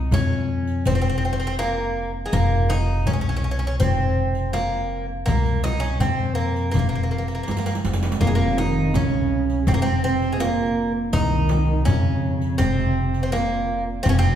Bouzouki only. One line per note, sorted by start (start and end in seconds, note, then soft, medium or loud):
0.00 0.15 D#4 medium
0.14 0.86 C#4 medium
0.87 0.94 C4 medium
0.95 1.00 C4 medium
1.02 1.08 C4 medium
1.09 1.16 C4 medium
1.18 1.24 C4 medium
1.25 1.32 C4 medium
1.33 1.38 C4 medium
1.40 1.46 C4 medium
1.47 1.54 C4 medium
1.59 2.10 A#3 medium
2.26 2.33 G#3 medium
2.33 2.71 A#3 medium
2.70 3.08 D#4 medium
3.07 3.12 C#4 medium
3.13 3.20 C#4 medium
3.21 3.28 C#4 medium
3.29 3.35 C#4 medium
3.37 3.43 C#4 medium
3.44 3.50 C#4 soft
3.51 3.58 C#4 medium
3.59 3.66 C#4 medium
3.67 3.75 C#4 medium
3.80 4.53 C4 medium
4.53 5.05 A#3 medium
5.26 5.61 A#3 medium
5.64 5.83 D#4 medium
5.80 5.98 C#4 medium
6.00 6.35 C4 medium
6.35 6.70 A#3 medium
6.71 6.78 A#3 medium
6.79 6.87 A#3 soft
6.89 6.94 A#3 soft
6.95 7.02 A#3 soft
7.03 7.10 A#3 soft
7.11 7.17 A#3 soft
7.18 7.26 A#3 soft
7.28 7.34 A#3 soft
7.35 7.42 A#3 soft
7.43 7.50 A#3 soft
7.51 7.57 A#3 soft
7.58 7.65 A#3 soft
7.66 7.72 A#3 medium
8.21 8.27 A#3 medium
8.27 8.34 G#3 medium
8.35 8.56 A#3 medium
8.58 8.95 D#4 medium
8.95 9.67 C#4 medium
9.68 9.74 C4 medium
9.74 9.81 A#3 medium
9.82 10.03 C4 medium
10.04 10.31 C4 medium
10.32 10.40 G#3 medium
10.40 10.91 A#3 medium
11.13 11.82 D#4 medium
11.85 12.58 C#4 medium
12.58 13.22 C4 medium
13.23 13.31 C4 medium
13.32 13.83 A#3 medium
14.03 14.09 C4 medium
14.09 14.17 C#4 medium
14.19 14.35 C4 medium